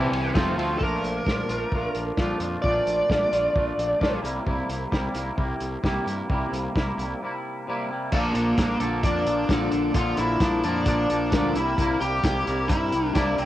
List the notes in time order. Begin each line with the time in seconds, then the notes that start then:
Already playing: C3 E3 G3 C4 E4 A5
0.11 C2, ride
0.33 F1 F3 A3 C4 F4, kick, snare, ride
0.57 D2 F3 A3 C4 F4, ride
0.78 A#1 A#2 F3 A3 D4 A#4, kick
0.82 F4
1.03 A#1, closed hi-hat
1.26 A#1 F3 A3 D4 F4, kick, snare
1.48 A#1 A3 D4 F4, closed hi-hat
1.72 A#1 F3 A3 D4, kick
1.76 F4
1.95 A#1, closed hi-hat
2.17 A#1 A#2 F3 A3 D4 F4, kick, snare
2.40 F2 A3 D4 F4, closed hi-hat
2.62 A#1 A#2 F3 A3 D5, kick
2.66 D4 F4
2.86 A#1, closed hi-hat
3.09 A#1 F3 A3 D4 F4, kick, snare
3.31 A#1 A3 D4 F4, closed hi-hat
3.53 A#1 F3 A3 D4 F4, kick
3.78 A#1, closed hi-hat
3.99 A#1 A#2 F3 A3 D4 F4, kick, snare
4.22 C2 C3 G3 A#3 E4, closed hi-hat
4.45 C2 C3 G3 A#3 E4, kick
4.69 C2, closed hi-hat
4.91 C2 C3 G3 A#3 E4, kick, snare
5.14 C2 G3 A#3 E4, closed hi-hat
5.36 C2 C3 G3 A#3 E4, kick
5.60 C2, closed hi-hat
5.83 C2 C3 G3 A#3 E4, kick, snare
6.06 G2 G3 A#3 E4, closed hi-hat
6.29 C2 C3 G3 A#3 E4, kick
6.52 C2, closed hi-hat
6.75 C2 C3 G3 A#3 E4, kick, snare
6.97 C2 A#3 E4, closed hi-hat
7.01 G3
7.22 C3 G3 A#3 E4
7.67 C3 G3 A#3 E4
7.89 G3 A#3 E4
8.12 A#1 A#2 D3 F3 A#3 D4 A4, kick, crash
8.35 A#1 F3 A#3 D4 A4, closed hi-hat
8.57 A#1 F3 A#3 D4, kick, snare, closed hi-hat
8.61 A4
8.79 A#1 A#2 D3 F3 A#3 D4 A4, closed hi-hat
9.03 F2 F3 A#3 D4 A4, kick, closed hi-hat
9.25 A#1 F3 A#3 D4 A4, closed hi-hat
9.49 A#1 A#2 D3 F3 A#3 D4 A4, kick, snare, closed hi-hat
9.71 A#1 F3 A#3 D4 A4, closed hi-hat
9.94 A#1 A#2 D3 F3 A#3 D4 F4 A4, kick, closed hi-hat
10.17 A#1 F3 A#3 D4 E4 A4, closed hi-hat
10.40 A#1 F3 A#3 D4 A4, kick, snare, closed hi-hat
10.64 F2 A#2 D3 F3 A#3 D4 A4, closed hi-hat
10.86 A#1 F3 A#3 D4 A4, kick, closed hi-hat
11.10 A#1 F3 A#3 D4 A4, closed hi-hat
11.32 D2 A#2 D3 F3 A#3 D4, kick, snare, closed hi-hat
11.36 A4
11.55 C2 C3 G3 A#3 E4, closed hi-hat
11.77 C2 C3 G3 A#3 E4, kick, closed hi-hat
12.00 C2 A#3 E4 G4, closed hi-hat
12.05 G3
12.24 C2 C3 G3 A#3 E4, kick, snare, closed hi-hat
12.45 C2 C3 G3 A#3 E4, closed hi-hat
12.68 G2 C3 G3 A#3 E4, kick, closed hi-hat
12.92 C2 G3 A#3 E4, closed hi-hat
13.14 C2 C3 G3 A#3 D4 E4, kick, snare, closed hi-hat
13.37 C2 G3 A#3 C4 E4, closed hi-hat